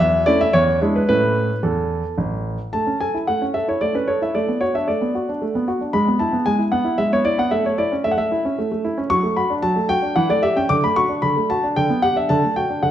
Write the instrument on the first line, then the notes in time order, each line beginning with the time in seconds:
grand piano
0.00 E2 E5
0.26 A3 C#4 E4 D5
0.41 E5
0.53 E2 C#5
0.81 G#3 D4 E4
0.96 B4
1.09 A2 C#4 E4 B4
1.63 E2 A4
2.18 A1
2.73 A3 A5
2.87 C#4
3.01 A4 G#5
3.14 E4
3.27 A3 F#5
3.42 C#4
3.54 A4 E5
3.68 E4 C#5
3.81 A3 D5
3.94 C#4 B4
4.08 A4 C#5
4.22 E4 E5
4.35 A3 D5
4.48 B3
4.61 F#4 C#5
4.74 D4 E5
4.88 A3 D5
5.01 B3
5.15 F#4
5.29 D4
5.42 A3
5.55 B3
5.68 F#4
5.81 D4
5.93 G#3 B5
6.08 B3
6.19 E4 A5
6.33 B3
6.46 G#3 G#5
6.59 E4
6.72 B3 F#5
6.85 E4
6.98 G#3 E5
7.12 B3 C#5
7.25 E4 D5
7.38 B3 F#5
7.51 A3 E5
7.65 A3 C#5
7.78 E4 D5
7.92 C#4
8.04 A3 E5
8.11 F#5
8.17 A3 E5
8.32 E4
8.45 C#4
8.58 A3
8.72 A3
8.85 E4
8.98 C#4
9.10 F#3 C#6
9.23 A3
9.37 F#4 B5
9.50 D4
9.62 F#3 A5
9.76 A3
9.89 F#4 G5
10.02 D4
10.16 E3 F#5
10.29 A3 D5
10.43 G4 E5
10.56 C#4 G5
10.69 D3 D6
10.83 A3 B5
10.96 F#4 C#6
11.09 D4
11.22 D3 B5
11.36 A3
11.50 F#4 A5
11.64 D4
11.76 D3 G5
11.90 B3
12.02 G4 F#5
12.16 D4 E5
12.29 D3 A5
12.43 A3
12.56 F#4 G5
12.70 D4
12.83 D3 F#5